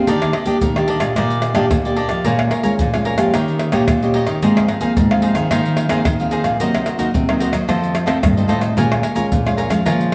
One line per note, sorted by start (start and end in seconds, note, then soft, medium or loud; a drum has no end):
0.00 0.43 A#3 medium
0.00 0.43 D4 medium
0.00 0.43 G4 medium
0.07 0.59 D#3 medium
0.07 0.31 D#3 loud
0.07 0.32 D4 medium
0.07 0.33 G4 medium
0.07 0.34 D5 medium
0.07 0.33 D#5 medium
0.07 pandeiro medium
0.07 shaker medium
0.07 surdo medium
0.22 pandeiro soft
0.22 tamborim medium
0.22 shaker soft
0.22 surdo soft
0.33 0.45 D4 soft
0.33 0.46 G4 soft
0.33 0.46 D5 medium
0.33 0.46 D#5 medium
0.33 pandeiro medium
0.33 tamborim medium
0.46 0.70 A#3 medium
0.46 0.70 D4 medium
0.46 0.57 D4 medium
0.46 0.71 G4 medium
0.46 0.57 G4 medium
0.46 0.57 D5 medium
0.46 0.57 D#5 medium
0.46 pandeiro medium
0.46 shaker medium
0.46 surdo soft
0.61 1.14 A#2 medium
0.61 0.97 D#3 medium
0.61 pandeiro medium
0.61 shaker medium
0.61 surdo medium
0.76 1.12 A#3 medium
0.76 1.13 D4 medium
0.76 1.13 G4 medium
0.76 0.87 G4 soft
0.76 0.88 D5 soft
0.76 0.88 D#5 soft
0.76 pandeiro soft
0.76 tamborim medium
0.76 shaker soft
0.88 1.01 D4 medium
0.88 1.01 G4 medium
0.88 0.99 D5 medium
0.88 1.00 D#5 medium
0.88 pandeiro medium
1.00 1.13 A#2 medium
1.00 1.15 G4 soft
1.00 1.14 D5 soft
1.00 1.14 D#5 soft
1.00 pandeiro medium
1.00 tamborim medium
1.00 shaker medium
1.00 surdo soft
1.16 1.52 A#2 loud
1.16 1.68 D#3 medium
1.16 1.53 A#3 medium
1.16 1.54 G4 medium
1.16 1.53 G4 medium
1.16 1.54 D5 medium
1.16 1.54 D#5 medium
1.16 pandeiro medium
1.16 tamborim medium
1.16 shaker medium
1.16 surdo medium
1.30 pandeiro soft
1.30 shaker soft
1.42 pandeiro medium
1.42 tamborim medium
1.42 shaker medium
1.54 1.68 A#2 medium
1.54 1.79 A#3 medium
1.54 1.65 D4 medium
1.54 1.79 D4 medium
1.54 1.65 G4 medium
1.54 1.80 G4 medium
1.54 1.65 D5 medium
1.54 1.65 D#5 medium
1.54 pandeiro medium
1.54 tamborim medium
1.54 shaker medium
1.54 surdo soft
1.71 2.23 A#2 soft
1.71 2.06 A#2 medium
1.71 pandeiro medium
1.71 tamborim medium
1.71 shaker medium
1.71 surdo loud
1.85 2.21 A#3 medium
1.85 2.22 D4 medium
1.85 2.22 G4 medium
1.85 1.95 G4 soft
1.85 1.97 D5 medium
1.85 1.96 D#5 soft
1.85 pandeiro soft
1.85 shaker soft
1.96 2.10 D4 medium
1.96 2.09 G4 medium
1.96 2.07 D5 medium
1.96 2.08 D#5 medium
1.96 pandeiro medium
2.09 2.22 F3 medium
2.09 2.23 G4 soft
2.09 2.23 D5 soft
2.09 2.23 D#5 soft
2.09 pandeiro soft
2.09 tamborim medium
2.09 shaker medium
2.25 2.77 A#2 medium
2.25 2.49 A#2 loud
2.25 2.51 G#3 medium
2.25 2.51 C#4 medium
2.25 2.51 F4 medium
2.25 2.49 A#4 medium
2.25 2.50 C#5 medium
2.25 2.50 F5 medium
2.25 2.51 G#5 medium
2.25 pandeiro medium
2.25 shaker medium
2.25 surdo medium
2.39 pandeiro soft
2.39 tamborim medium
2.39 shaker soft
2.39 surdo soft
2.50 2.62 A#4 soft
2.50 2.62 C#5 soft
2.50 2.62 F5 soft
2.50 2.63 G#5 soft
2.50 pandeiro medium
2.50 tamborim medium
2.63 2.88 G#3 medium
2.63 2.88 C#4 medium
2.63 2.88 F4 medium
2.63 2.74 A#4 medium
2.63 2.74 C#5 medium
2.63 2.74 F5 medium
2.63 2.74 G#5 medium
2.63 pandeiro medium
2.63 shaker medium
2.63 surdo soft
2.79 3.31 F2 medium
2.79 3.15 A#2 medium
2.79 pandeiro medium
2.79 shaker medium
2.79 surdo medium
2.94 3.16 G#3 medium
2.94 3.17 C#4 medium
2.94 3.17 F4 medium
2.94 3.05 C#5 soft
2.94 3.05 F5 soft
2.94 3.06 G#5 soft
2.94 pandeiro soft
2.94 tamborim medium
2.94 shaker soft
3.05 3.19 A#4 medium
3.05 3.18 C#5 medium
3.05 3.17 F5 medium
3.05 3.16 G#5 medium
3.05 pandeiro medium
3.18 3.31 F3 medium
3.18 3.69 A#3 medium
3.18 3.69 C#4 medium
3.18 3.69 G4 medium
3.18 3.32 C#5 soft
3.18 3.32 F5 soft
3.18 3.31 G#5 medium
3.18 pandeiro medium
3.18 tamborim medium
3.18 shaker medium
3.18 surdo soft
3.34 3.85 D#3 medium
3.34 3.69 D#3 medium
3.34 3.71 D#4 medium
3.34 3.72 G4 medium
3.34 3.72 C#5 medium
3.34 3.72 D#5 medium
3.34 pandeiro medium
3.34 tamborim medium
3.34 shaker medium
3.34 surdo medium
3.48 pandeiro soft
3.48 shaker soft
3.59 pandeiro medium
3.59 tamborim medium
3.72 3.85 A#2 medium
3.72 3.96 A#3 medium
3.72 3.96 C#4 medium
3.72 3.83 D#4 medium
3.72 3.83 G4 medium
3.72 3.97 G4 medium
3.72 3.83 C#5 medium
3.72 3.83 D#5 medium
3.72 pandeiro medium
3.72 tamborim medium
3.72 shaker medium
3.72 surdo soft
3.88 4.23 A#2 medium
3.88 pandeiro medium
3.88 tamborim medium
3.88 shaker medium
3.88 surdo loud
4.03 4.39 A#3 medium
4.03 4.39 C#4 medium
4.03 4.39 G4 medium
4.03 4.14 G4 soft
4.03 4.14 C#5 soft
4.03 4.15 D#5 medium
4.03 pandeiro soft
4.03 shaker soft
4.14 4.27 D#4 medium
4.14 4.27 G4 medium
4.14 4.27 C#5 medium
4.14 4.25 D#5 medium
4.14 pandeiro medium
4.27 4.39 D#3 medium
4.27 4.41 G4 soft
4.27 4.41 C#5 soft
4.27 4.40 D#5 soft
4.27 pandeiro soft
4.27 tamborim medium
4.27 shaker medium
4.42 4.94 G#2 medium
4.42 4.66 G#2 loud
4.42 4.79 F3 medium
4.42 4.79 A#3 medium
4.42 4.79 C4 medium
4.42 4.67 D#4 medium
4.42 4.68 G#4 medium
4.42 4.68 C5 medium
4.42 4.69 F5 medium
4.42 pandeiro medium
4.42 shaker medium
4.42 surdo medium
4.57 pandeiro soft
4.57 tamborim medium
4.57 shaker soft
4.57 surdo soft
4.68 4.80 D#4 medium
4.68 4.80 G#4 soft
4.68 4.80 C5 soft
4.68 4.81 F5 medium
4.68 pandeiro medium
4.68 tamborim medium
4.81 5.05 F3 medium
4.81 5.05 A#3 medium
4.81 5.05 C4 medium
4.81 4.91 D#4 medium
4.81 4.91 G#4 medium
4.81 4.92 C5 medium
4.81 4.92 F5 medium
4.81 pandeiro medium
4.81 shaker medium
4.81 surdo soft
4.97 5.32 G#2 loud
4.97 5.49 D#3 medium
4.97 pandeiro medium
4.97 shaker medium
4.97 surdo loud
5.11 5.47 F3 medium
5.11 5.48 A#3 medium
5.11 5.48 C4 medium
5.11 5.22 G#4 soft
5.11 5.22 C5 soft
5.11 5.23 F5 medium
5.11 pandeiro soft
5.11 tamborim medium
5.11 shaker soft
5.22 5.36 D#4 medium
5.22 5.35 G#4 medium
5.22 5.35 C5 medium
5.22 5.34 F5 medium
5.22 pandeiro medium
5.35 5.48 D#3 medium
5.35 5.50 G#4 soft
5.35 5.49 C5 soft
5.35 5.49 F5 soft
5.35 pandeiro medium
5.35 tamborim medium
5.35 shaker medium
5.35 surdo soft
5.51 6.03 G#2 medium
5.51 5.86 D#3 medium
5.51 5.88 F3 medium
5.51 5.88 A#3 soft
5.51 5.88 C4 medium
5.51 5.89 D#4 medium
5.51 5.89 G#4 medium
5.51 5.89 C5 medium
5.51 5.90 F5 medium
5.51 pandeiro medium
5.51 tamborim medium
5.51 shaker medium
5.51 surdo medium
5.65 pandeiro soft
5.65 shaker soft
5.77 pandeiro medium
5.77 tamborim medium
5.89 6.02 D#3 medium
5.89 6.14 F3 medium
5.89 6.14 A#3 medium
5.89 6.14 C4 medium
5.89 6.00 D#4 medium
5.89 6.00 G#4 medium
5.89 6.00 C5 medium
5.89 6.01 F5 medium
5.89 pandeiro medium
5.89 tamborim medium
5.89 shaker medium
5.89 surdo soft
6.05 6.57 D#3 medium
6.05 6.41 D#3 medium
6.05 pandeiro medium
6.05 tamborim medium
6.05 shaker medium
6.05 surdo loud
6.19 6.56 F3 medium
6.19 6.56 A#3 medium
6.19 6.56 C4 medium
6.19 6.31 G#4 soft
6.19 6.32 C5 soft
6.19 6.32 F5 soft
6.19 pandeiro soft
6.19 shaker soft
6.31 6.45 D#4 medium
6.31 6.45 G#4 medium
6.31 6.44 C5 medium
6.31 6.43 F5 medium
6.31 pandeiro medium
6.31 shaker medium
6.44 6.57 A#2 medium
6.44 6.59 G#4 soft
6.44 6.58 C5 soft
6.44 6.58 F5 medium
6.44 pandeiro medium
6.44 tamborim medium
6.44 shaker medium
6.59 7.11 C3 medium
6.59 6.83 C3 loud
6.59 6.85 F#3 medium
6.59 6.85 A#3 medium
6.59 6.86 D#4 medium
6.59 6.85 F#4 medium
6.59 6.86 A#4 medium
6.59 6.86 C5 medium
6.59 6.86 D#5 medium
6.59 pandeiro medium
6.59 shaker medium
6.59 surdo medium
6.75 pandeiro soft
6.75 tamborim medium
6.75 shaker soft
6.75 surdo soft
6.86 6.98 F#4 soft
6.86 6.98 A#4 soft
6.86 6.98 C5 soft
6.86 6.99 D#5 medium
6.86 pandeiro medium
6.86 tamborim medium
6.86 shaker medium
6.98 7.22 F#3 medium
6.98 7.22 A#3 medium
6.98 7.23 D#4 medium
6.98 7.09 F#4 medium
6.98 7.09 A#4 medium
6.98 7.09 C5 medium
6.98 7.09 D#5 medium
6.98 pandeiro medium
6.98 shaker medium
6.98 surdo soft
7.14 7.66 C3 medium
7.14 7.49 C3 medium
7.14 pandeiro medium
7.14 shaker medium
7.14 surdo loud
7.28 7.65 F#3 medium
7.28 7.65 A#3 medium
7.28 7.65 D#4 medium
7.28 7.39 A#4 soft
7.28 7.40 C5 soft
7.28 7.41 D#5 medium
7.28 pandeiro soft
7.28 tamborim medium
7.28 shaker soft
7.40 7.53 F#4 medium
7.40 7.52 A#4 medium
7.40 7.52 C5 medium
7.40 7.51 D#5 medium
7.40 pandeiro medium
7.40 shaker medium
7.52 7.65 F#3 medium
7.52 7.67 A#4 soft
7.52 7.67 C5 soft
7.52 7.66 D#5 soft
7.52 pandeiro medium
7.52 tamborim medium
7.52 shaker medium
7.52 surdo soft
7.68 8.20 F2 medium
7.68 8.05 D#3 medium
7.68 8.04 F3 loud
7.68 8.05 A3 medium
7.68 8.05 C4 medium
7.68 8.05 F4 medium
7.68 8.05 A4 medium
7.68 8.05 C5 medium
7.68 8.06 D#5 medium
7.68 pandeiro medium
7.68 tamborim medium
7.68 shaker medium
7.68 surdo medium
7.83 pandeiro soft
7.83 shaker soft
7.95 pandeiro medium
7.95 tamborim medium
7.95 shaker medium
8.06 8.20 C3 medium
8.06 8.31 D#3 medium
8.06 8.31 A3 medium
8.06 8.32 C4 medium
8.06 8.17 F4 medium
8.06 8.17 A4 medium
8.06 8.17 C5 medium
8.06 8.17 D#5 medium
8.06 pandeiro medium
8.06 tamborim medium
8.06 shaker medium
8.06 surdo soft
8.23 8.47 G2 medium
8.23 8.75 C3 medium
8.23 pandeiro medium
8.23 tamborim medium
8.23 shaker medium
8.23 surdo loud
8.37 8.73 D#3 medium
8.37 8.74 A3 medium
8.37 8.74 C4 medium
8.37 8.47 A4 soft
8.37 8.48 C5 soft
8.37 8.48 D#5 soft
8.37 pandeiro soft
8.37 shaker soft
8.48 8.74 A2 medium
8.48 8.61 F4 medium
8.48 8.62 A4 medium
8.48 8.61 C5 medium
8.48 8.60 D#5 medium
8.48 pandeiro medium
8.48 shaker medium
8.61 8.76 A4 soft
8.61 8.75 C5 soft
8.61 8.75 D#5 soft
8.61 pandeiro soft
8.61 tamborim medium
8.61 shaker medium
8.77 9.00 A#2 loud
8.77 9.29 A#2 medium
8.77 9.03 G#3 medium
8.77 9.03 C#4 medium
8.77 9.03 F4 medium
8.77 9.01 A#4 medium
8.77 9.02 C#5 medium
8.77 9.03 F5 medium
8.77 9.03 G#5 medium
8.77 pandeiro medium
8.77 shaker medium
8.77 surdo medium
8.92 pandeiro soft
8.92 tamborim medium
8.92 shaker soft
8.92 surdo soft
9.03 9.14 A#4 soft
9.03 9.14 C#5 soft
9.03 9.15 F5 soft
9.03 9.15 G#5 soft
9.03 pandeiro medium
9.03 tamborim medium
9.15 9.40 G#3 medium
9.15 9.40 C#4 medium
9.15 9.40 F4 medium
9.15 9.26 A#4 medium
9.15 9.26 C#5 medium
9.15 9.26 F5 medium
9.15 9.26 G#5 medium
9.15 pandeiro medium
9.15 shaker medium
9.15 surdo soft
9.31 9.83 F2 medium
9.31 9.66 A#2 medium
9.31 pandeiro medium
9.31 shaker medium
9.31 surdo loud
9.45 9.68 G#3 medium
9.45 9.69 C#4 medium
9.45 9.69 F4 medium
9.45 9.57 C#5 soft
9.45 9.57 F5 soft
9.45 9.58 G#5 medium
9.45 pandeiro soft
9.45 tamborim medium
9.45 shaker soft
9.57 9.70 A#4 medium
9.57 9.70 C#5 medium
9.57 9.69 F5 medium
9.57 9.68 G#5 medium
9.57 pandeiro medium
9.57 shaker medium
9.69 9.82 F3 medium
9.69 9.80 G#3 medium
9.69 9.81 C#4 medium
9.69 9.81 F4 medium
9.69 9.84 C#5 soft
9.69 9.84 F5 soft
9.69 9.83 G#5 soft
9.69 pandeiro medium
9.69 tamborim medium
9.69 shaker medium
9.69 surdo soft
9.85 10.15 A#2 medium
9.85 10.15 F3 loud
9.85 10.11 G#3 medium
9.85 10.11 C#4 medium
9.85 10.11 F4 medium
9.85 10.15 A#4 medium
9.85 10.15 C#5 medium
9.85 10.15 F5 medium
9.85 10.15 G#5 medium
9.85 pandeiro medium
9.85 tamborim medium
9.85 shaker medium
9.85 surdo medium
10.01 pandeiro soft
10.01 shaker soft